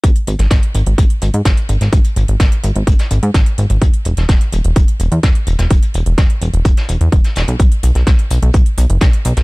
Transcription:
<<
  \new Staff \with { instrumentName = "Analog synth bass" } { \clef bass \time 4/4 \key e \lydian \tempo 4 = 127 gis,,16 r16 gis,,16 gis,,16 gis,,16 r16 gis,,16 gis,,16 gis,,16 r16 gis,,16 gis,16 gis,,16 r16 gis,,16 gis,,16 | gis,,16 r16 gis,,16 gis,,16 gis,,16 r16 gis,,16 gis,,16 gis,,16 r16 gis,,16 gis,16 gis,,16 r16 gis,,16 gis,,16 | e,,16 r16 e,,16 e,,16 e,,16 r16 e,,16 e,,16 r8 e,,16 e,16 e,,16 r16 e,,16 e,,16 | e,,16 r16 e,,16 e,,16 e,,16 r16 e,,16 e,,16 e,,16 r16 e,,16 e,16 e,,16 r16 e,,16 b,,16 |
b,,16 r16 b,,16 b,,16 b,,16 r16 b,,16 b,,16 b,,16 r16 b,,16 fis,,16 b,,16 r16 b,,16 b,,16 | }
  \new DrumStaff \with { instrumentName = "Drums" } \drummode { \time 4/4 <hh bd>16 hh16 hh16 <hh sn>16 <hh bd sn>16 hh16 hh16 hh16 <hh bd>16 hh16 hh16 hh16 <hh bd sn>16 hh16 hh16 <hh sn>16 | <hh bd>16 hh16 hh16 hh16 <hh bd sn>16 hh16 hh16 hh16 <hh bd>16 <hh sn>16 hh16 hh16 <hh bd sn>16 hh16 hh16 hh16 | <hh bd>16 hh16 hh16 <hh sn>16 <hh bd sn>16 hh16 hh16 hh16 <hh bd>16 hh16 hh16 hh16 <hh bd sn>16 hh16 hh16 <hh sn>16 | <hh bd>16 hh16 hh16 hh16 <hh bd sn>16 hh16 hh16 hh16 <hh bd>16 <hh sn>16 hh16 hh16 <hh bd>16 <hh sn>16 <hh sn>16 hh16 |
<hh bd>16 hh16 <hh hho>16 <hh sn>16 <hh bd sn>16 hh16 <hh hho>16 hh16 <hh bd>16 hh16 <hh hho>16 hh16 <hh bd sn>16 hh16 <hh hho>16 <hh sn>16 | }
>>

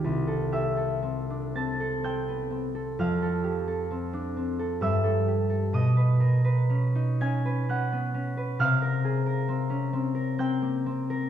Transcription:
\new Staff \with { instrumentName = "Harp" } { \time 3/4 \key c \phrygian \tempo 4 = 65 << { r8 <e'' e'''>4 <a'' a'''>8 <g'' g'''>4 | <f'' f'''>2 <fes'' fes'''>4 | <dis'' dis'''>4. <aes'' aes'''>8 <fis'' fis'''>4 | <f'' f'''>2 <g'' g'''>4 | } \\ { <c, g'>16 a'16 g'16 a'16 c'16 d'16 c'16 a'16 c'16 ces'16 c'16 a'16 | f,16 a'16 g'16 a'16 c'16 d'16 c'16 a'16 g,16 a'16 g'16 a'16 | b,16 b'16 bes'16 b'16 cis'16 dis'16 cis'16 b'16 cis'16 b16 cis'16 b'16 | c16 bes'16 aes'16 bes'16 c'16 des'16 c'16 bes'16 c'16 bes16 c'16 bes'16 | } >> }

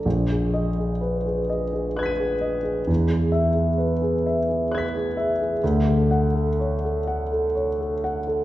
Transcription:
\new Staff \with { instrumentName = "Grand piano" } { \time 6/8 \key e \lydian \tempo 4. = 42 << { r8 dis''8 r4 <fis''' gis''' b''' dis''''>4 | r8 e''8 r4 <fis''' gis''' b'''>4 | r8 fis''8 r2 | } \\ { ais,,16 gis'8 gis'16 b'16 gis'16 dis''16 gis'16 b'16 gis'16 dis''16 gis'16 | e,16 gis'8 gis'16 b'16 gis'16 e''16 gis'16 b'16 gis'16 e''16 gis'16 | d,16 a'8 a'16 cis''16 a'16 fis''16 a'16 cis''16 a'16 fis''16 a'16 | } >> }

